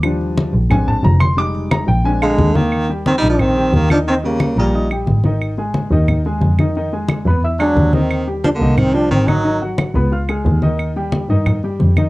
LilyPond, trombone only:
\new Staff \with { instrumentName = "Trombone" } { \time 4/4 \key ees \major \tempo 4 = 178 r1 | r2 r8 aes4 bes8~ | bes8 r8 \tuplet 3/2 { c'8 ees'8 d'8 } c'4 bes8 d'8 | c'8 bes4 g4 r4. |
r1 | r2 r8 d'4 c'8~ | c'8 r8 \tuplet 3/2 { d'8 bes4 } c'8 d'8 c'8 ees'8~ | ees'8 r2. r8 |
r1 | }